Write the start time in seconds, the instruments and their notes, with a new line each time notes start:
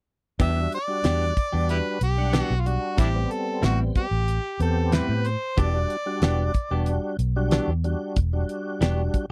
0.39 fingered electric bass E2, clean electric guitar E3 B3 D4 G4, tonewheel organ G3 D4 F#4, harmonica E5, kick, closed hi-hat
0.55 tonewheel organ G3 D4 F#4
0.72 harmonica D5, closed hi-hat
0.87 tonewheel organ G3 D4 F#4
1.04 fingered electric bass E2, clean electric guitar E3 B3 D4 G4, snare, closed hi-hat
1.37 kick, closed hi-hat
1.52 fingered electric bass E2, tonewheel organ G3 D4 F#4, clean electric guitar B3 D4 G4
1.69 harmonica E4 G4 B4, closed hi-hat
2.01 fingered electric bass B1, harmonica G4, closed hi-hat
2.17 tonewheel organ G3 D4 F#5
2.33 clean electric guitar E3 B3 D4 G4, snare, closed hi-hat
2.41 harmonica F#4
2.50 fingered electric bass B1
2.60 harmonica F4
2.66 tonewheel organ G3 D4 F#4, harmonica F#4, closed hi-hat
2.97 fingered electric bass A1, clean electric guitar A2 G3 C4 E4, harmonica D4 E4 G4, kick, closed hi-hat
3.15 tonewheel organ G3 B3 C4
3.31 harmonica A4, closed hi-hat
3.62 fingered electric bass A1, clean electric guitar A2 G3 C4 E4, harmonica F#4, snare, closed hi-hat
3.95 harmonica G4, kick, closed hi-hat
4.11 fingered electric bass A1
4.28 closed hi-hat
4.60 fingered electric bass E2, tonewheel organ B3 C4 G4, harmonica A4, closed hi-hat
4.92 clean electric guitar A2 G3 C4 E4, harmonica B4, snare, closed hi-hat
5.09 fingered electric bass A2
5.25 harmonica C5, closed hi-hat
5.57 fingered electric bass E1, clean electric guitar E3 B3 D4 G4, tonewheel organ G3 D4 F#4, harmonica D5, kick, closed hi-hat
5.73 tonewheel organ G3 D4 F#4
5.90 closed hi-hat
6.06 tonewheel organ G3 D4 F#4
6.22 fingered electric bass E1, clean electric guitar E3 B3 D4 G4, snare, closed hi-hat
6.54 kick, closed hi-hat
6.70 fingered electric bass E1, tonewheel organ G3 D4 F#4, clean electric guitar B3 D4 G4
6.86 closed hi-hat
7.19 fingered electric bass B1, closed hi-hat
7.36 tonewheel organ G3 D4 F#4
7.51 clean electric guitar E3 B3 D4 G4, snare, closed hi-hat
7.68 fingered electric bass E2
7.84 tonewheel organ G3 D4 F#4, closed hi-hat
8.16 fingered electric bass E1, kick, closed hi-hat
8.33 tonewheel organ G3 D4 F#4
8.49 closed hi-hat
8.81 fingered electric bass E1, clean electric guitar E3 B3 D4 G4, snare, closed hi-hat
9.14 kick, closed hi-hat